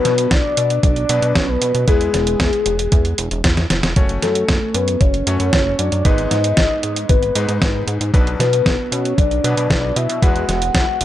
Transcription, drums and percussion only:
0.05 snare soft
0.05 closed hi-hat medium
0.18 closed hi-hat medium
0.31 kick loud
0.31 snare loud
0.31 closed hi-hat medium
0.57 closed hi-hat medium
0.70 closed hi-hat soft
0.83 kick loud
0.83 closed hi-hat medium
0.96 closed hi-hat soft
1.09 closed hi-hat medium
1.22 closed hi-hat medium
1.35 kick loud
1.35 snare loud
1.35 closed hi-hat medium
1.62 closed hi-hat medium
1.75 closed hi-hat medium
1.88 kick loud
1.88 closed hi-hat medium
2.01 closed hi-hat soft
2.14 snare soft
2.14 closed hi-hat medium
2.27 closed hi-hat medium
2.40 kick loud
2.40 snare loud
2.40 closed hi-hat medium
2.53 closed hi-hat soft
2.66 closed hi-hat medium
2.79 closed hi-hat medium
2.92 kick loud
2.92 closed hi-hat medium
3.05 closed hi-hat soft
3.18 closed hi-hat medium
3.31 closed hi-hat medium
3.44 kick loud
3.44 snare loud
3.44 closed hi-hat medium
3.57 snare soft
3.57 closed hi-hat soft
3.70 snare medium
3.70 closed hi-hat medium
3.83 snare medium
3.83 closed hi-hat medium
3.96 kick loud
3.96 closed hi-hat medium
4.09 closed hi-hat soft
4.22 snare soft
4.22 closed hi-hat medium
4.35 closed hi-hat medium
4.49 kick loud
4.49 snare loud
4.49 closed hi-hat medium
4.75 closed hi-hat medium
4.88 closed hi-hat medium
5.01 kick loud
5.01 closed hi-hat medium
5.14 closed hi-hat soft
5.27 closed hi-hat medium
5.40 closed hi-hat medium
5.53 kick loud
5.53 snare loud
5.53 closed hi-hat medium
5.79 closed hi-hat medium
5.92 closed hi-hat medium
6.05 kick loud
6.05 closed hi-hat medium
6.18 closed hi-hat soft
6.31 snare soft
6.31 closed hi-hat medium
6.44 closed hi-hat medium
6.57 kick loud
6.57 snare loud
6.57 closed hi-hat medium
6.83 closed hi-hat medium
6.96 closed hi-hat medium
7.09 kick loud
7.09 closed hi-hat medium
7.23 closed hi-hat soft
7.35 closed hi-hat medium
7.49 closed hi-hat soft
7.62 kick loud
7.62 snare loud
7.62 closed hi-hat medium
7.88 closed hi-hat medium
8.01 closed hi-hat medium
8.14 kick loud
8.14 closed hi-hat medium
8.27 closed hi-hat soft
8.40 snare soft
8.40 closed hi-hat medium
8.53 closed hi-hat soft
8.66 kick loud
8.66 snare loud
8.66 closed hi-hat medium
8.92 closed hi-hat medium
9.05 closed hi-hat soft
9.18 kick loud
9.18 closed hi-hat medium
9.31 closed hi-hat soft
9.44 closed hi-hat medium
9.57 closed hi-hat soft
9.70 kick loud
9.70 snare loud
9.70 closed hi-hat medium
9.96 closed hi-hat medium
10.10 closed hi-hat soft
10.22 kick loud
10.22 closed hi-hat medium
10.36 closed hi-hat soft
10.49 snare soft
10.49 closed hi-hat medium
10.62 closed hi-hat soft
10.75 kick loud
10.75 snare loud
10.75 closed hi-hat medium
11.01 closed hi-hat medium

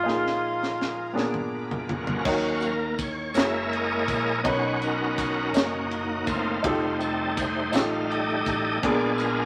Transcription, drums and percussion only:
0.08 snare soft
0.26 snare soft
0.63 snare soft
0.81 snare medium
1.18 snare medium
1.34 mid tom medium
1.71 floor tom medium
1.89 floor tom medium
2.07 floor tom medium
2.25 kick loud
2.25 crash medium
2.60 ride soft
2.60 tambourine medium
2.98 kick medium
2.98 ride medium
2.98 tambourine medium
3.34 snare medium
3.34 ride medium
3.34 tambourine medium
3.73 ride soft
4.08 kick medium
4.08 ride medium
4.08 tambourine soft
4.45 kick medium
4.45 ride medium
4.82 ride soft
4.82 tambourine medium
5.18 kick medium
5.18 ride medium
5.18 tambourine medium
5.54 snare medium
5.54 ride medium
5.54 tambourine medium
5.91 ride soft
6.27 kick medium
6.27 ride soft
6.27 tambourine medium
6.64 kick loud
6.64 ride medium
7.00 ride soft
7.00 tambourine medium
7.37 kick medium
7.37 ride medium
7.37 tambourine medium
7.73 snare medium
7.73 ride medium
7.73 tambourine medium
8.12 ride soft
8.46 kick medium
8.46 ride medium
8.46 tambourine soft
8.83 kick loud
8.83 ride medium
9.18 ride soft
9.18 tambourine medium

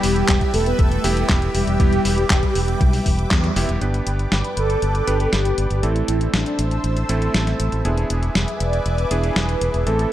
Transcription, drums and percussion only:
0.03 open hi-hat loud
0.16 closed hi-hat soft
0.29 kick loud
0.29 snare loud
0.29 clap loud
0.29 closed hi-hat medium
0.41 kick medium
0.41 closed hi-hat soft
0.54 open hi-hat loud
0.66 closed hi-hat soft
0.79 kick loud
0.79 closed hi-hat medium
0.92 closed hi-hat soft
1.04 open hi-hat loud
1.17 closed hi-hat soft
1.29 kick loud
1.29 snare loud
1.29 clap loud
1.29 closed hi-hat medium
1.42 closed hi-hat soft
1.55 open hi-hat loud
1.67 closed hi-hat soft
1.80 kick loud
1.80 closed hi-hat medium
1.93 closed hi-hat soft
2.05 open hi-hat loud
2.18 closed hi-hat soft
2.30 kick loud
2.30 snare loud
2.30 clap loud
2.30 closed hi-hat medium
2.43 kick medium
2.43 closed hi-hat soft
2.55 open hi-hat loud
2.68 closed hi-hat soft
2.81 kick loud
2.81 closed hi-hat medium
2.93 open hi-hat medium
3.06 kick medium
3.06 open hi-hat loud
3.19 closed hi-hat soft
3.31 kick loud
3.31 snare loud
3.31 clap loud
3.31 closed hi-hat medium
3.44 snare soft
3.44 closed hi-hat soft
3.56 open hi-hat loud
3.69 closed hi-hat soft
3.81 closed hi-hat medium
3.94 closed hi-hat soft
4.07 closed hi-hat medium
4.19 closed hi-hat soft
4.32 snare loud
4.32 closed hi-hat medium
4.44 closed hi-hat soft
4.57 closed hi-hat medium
4.70 closed hi-hat soft
4.82 closed hi-hat medium
4.95 closed hi-hat soft
5.07 closed hi-hat medium
5.20 closed hi-hat soft
5.33 snare loud
5.33 closed hi-hat medium
5.45 closed hi-hat soft
5.58 closed hi-hat medium
5.71 closed hi-hat soft
5.83 closed hi-hat medium
5.96 closed hi-hat soft
6.08 closed hi-hat medium
6.21 closed hi-hat soft
6.34 snare loud
6.34 closed hi-hat medium
6.46 closed hi-hat soft
6.59 closed hi-hat medium
6.71 closed hi-hat soft
6.84 closed hi-hat medium
6.97 closed hi-hat soft
7.09 closed hi-hat medium
7.22 closed hi-hat soft
7.34 snare loud
7.34 closed hi-hat medium
7.47 snare soft
7.47 closed hi-hat soft
7.60 closed hi-hat medium
7.72 closed hi-hat soft
7.85 closed hi-hat medium
7.97 closed hi-hat soft
8.10 closed hi-hat medium
8.23 closed hi-hat soft
8.35 snare loud
8.35 closed hi-hat medium
8.48 closed hi-hat soft
8.60 closed hi-hat medium
8.73 closed hi-hat soft
8.86 closed hi-hat medium
8.98 closed hi-hat soft
9.11 closed hi-hat medium
9.23 closed hi-hat soft
9.36 snare loud
9.36 closed hi-hat medium
9.49 closed hi-hat soft
9.61 closed hi-hat medium
9.74 closed hi-hat soft
9.87 closed hi-hat medium
9.99 closed hi-hat soft

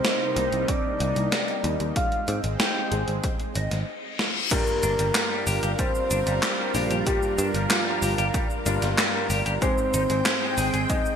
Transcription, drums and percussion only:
0.05 snare loud
0.05 closed hi-hat medium
0.36 closed hi-hat medium
0.52 closed hi-hat soft
0.68 kick loud
0.68 closed hi-hat medium
1.00 closed hi-hat medium
1.16 closed hi-hat medium
1.32 snare loud
1.32 closed hi-hat medium
1.48 closed hi-hat soft
1.64 closed hi-hat medium
1.80 closed hi-hat soft
1.96 kick loud
1.96 closed hi-hat medium
2.12 closed hi-hat soft
2.28 closed hi-hat medium
2.44 closed hi-hat medium
2.60 snare loud
2.60 closed hi-hat medium
2.92 closed hi-hat medium
3.08 closed hi-hat soft
3.24 kick loud
3.24 closed hi-hat medium
3.40 closed hi-hat soft
3.55 closed hi-hat medium
3.71 snare soft
3.71 closed hi-hat medium
4.19 snare medium
4.51 kick loud
4.51 closed hi-hat loud
4.51 crash loud
4.51 shaker soft
4.67 shaker soft
4.83 closed hi-hat medium
4.83 shaker medium
4.99 closed hi-hat medium
4.99 shaker soft
5.15 snare loud
5.15 clap loud
5.15 closed hi-hat loud
5.15 shaker soft
5.47 open hi-hat medium
5.47 shaker medium
5.63 closed hi-hat medium
5.63 shaker soft
5.79 kick loud
5.79 closed hi-hat loud
5.79 shaker soft
5.95 shaker soft
6.11 closed hi-hat medium
6.11 shaker medium
6.27 closed hi-hat medium
6.27 shaker soft
6.43 snare loud
6.43 clap loud
6.43 closed hi-hat loud
6.43 shaker soft
6.75 open hi-hat medium
6.75 shaker medium
6.91 closed hi-hat medium
6.91 shaker soft
7.07 kick loud
7.07 closed hi-hat loud
7.07 shaker soft
7.23 shaker soft
7.39 closed hi-hat medium
7.39 shaker medium
7.55 closed hi-hat medium
7.55 shaker soft
7.70 snare loud
7.70 clap loud
7.70 closed hi-hat loud
7.70 shaker soft
8.02 open hi-hat medium
8.02 shaker medium
8.18 closed hi-hat medium
8.18 shaker soft
8.34 kick loud
8.34 closed hi-hat loud
8.34 shaker soft
8.50 shaker soft
8.66 closed hi-hat medium
8.66 shaker medium
8.82 snare soft
8.82 closed hi-hat medium
8.82 shaker soft
8.98 snare loud
8.98 clap loud
8.98 closed hi-hat loud
8.98 shaker soft
9.30 open hi-hat medium
9.30 shaker medium
9.46 closed hi-hat medium
9.46 shaker soft
9.62 kick loud
9.62 closed hi-hat medium
9.62 shaker soft
9.78 shaker soft
9.94 closed hi-hat medium
9.94 shaker medium
10.10 closed hi-hat medium
10.10 shaker soft
10.26 snare loud
10.26 clap loud
10.26 closed hi-hat loud
10.26 shaker soft
10.58 open hi-hat medium
10.58 shaker medium
10.74 closed hi-hat medium
10.74 shaker soft
10.90 kick loud
10.90 closed hi-hat loud
10.90 shaker soft
11.06 shaker soft

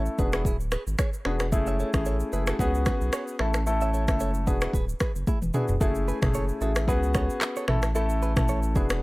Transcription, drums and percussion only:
0.06 shaker soft
0.18 kick medium
0.18 shaker medium
0.32 finger snap medium
0.32 cross-stick loud
0.32 shaker medium
0.45 kick medium
0.45 shaker medium
0.60 shaker medium
0.71 finger snap medium
0.71 cross-stick medium
0.71 shaker medium
0.87 shaker medium
0.99 finger snap medium
0.99 kick medium
0.99 cross-stick medium
0.99 shaker medium
1.14 shaker medium
1.25 finger snap medium
1.25 cross-stick medium
1.40 finger snap medium
1.40 cross-stick medium
1.40 shaker soft
1.52 kick loud
1.52 shaker medium
1.67 shaker medium
1.80 shaker medium
1.93 finger snap medium
1.93 kick medium
1.93 cross-stick medium
1.93 shaker medium
2.05 shaker medium
2.20 shaker soft
2.33 shaker medium
2.47 finger snap medium
2.47 cross-stick loud
2.47 shaker medium
2.59 kick medium
2.59 shaker medium
2.75 shaker medium
2.85 finger snap medium
2.85 kick medium
2.85 cross-stick medium
2.85 shaker medium
3.01 shaker medium
3.13 finger snap medium
3.13 cross-stick medium
3.13 shaker medium
3.28 shaker medium
3.39 finger snap medium
3.39 cross-stick medium
3.54 finger snap medium
3.54 cross-stick medium
3.54 shaker medium
3.67 shaker medium
3.81 shaker medium
3.94 shaker medium
4.08 finger snap medium
4.08 kick loud
4.08 cross-stick loud
4.08 shaker medium
4.20 shaker medium
4.34 shaker soft
4.47 kick medium
4.47 shaker medium
4.61 finger snap medium
4.61 cross-stick loud
4.61 shaker medium
4.74 kick medium
4.74 shaker medium
4.89 shaker medium
5.00 finger snap medium
5.00 kick medium
5.00 cross-stick medium
5.00 shaker medium
5.16 shaker medium
5.27 kick loud
5.27 high tom medium
5.27 shaker medium
5.42 mid tom medium
5.42 shaker medium
5.54 mid tom medium
5.54 shaker medium
5.68 floor tom medium
5.68 shaker medium
5.81 kick loud
5.81 shaker medium
5.95 shaker medium
6.08 shaker soft
6.22 finger snap medium
6.22 kick loud
6.22 cross-stick medium
6.22 mid tom medium
6.22 shaker medium
6.34 shaker medium
6.49 shaker soft
6.61 shaker medium
6.75 finger snap medium
6.75 cross-stick loud
6.75 shaker medium
6.88 kick medium
6.88 shaker medium
7.03 shaker medium
7.14 finger snap medium
7.14 kick medium
7.14 cross-stick medium
7.14 shaker medium
7.30 shaker medium
7.41 finger snap medium
7.41 cross-stick medium
7.41 clap medium
7.41 shaker medium
7.56 shaker medium
7.68 finger snap medium
7.68 cross-stick medium
7.68 mid tom medium
7.82 finger snap medium
7.82 cross-stick medium
7.82 shaker medium
7.95 shaker medium
8.09 shaker medium
8.22 shaker soft
8.36 finger snap medium
8.36 kick loud
8.36 cross-stick loud
8.36 mid tom medium
8.36 shaker medium
8.48 shaker medium
8.63 shaker soft
8.75 kick medium
8.75 shaker medium
8.89 finger snap medium
8.89 cross-stick loud
8.89 shaker medium

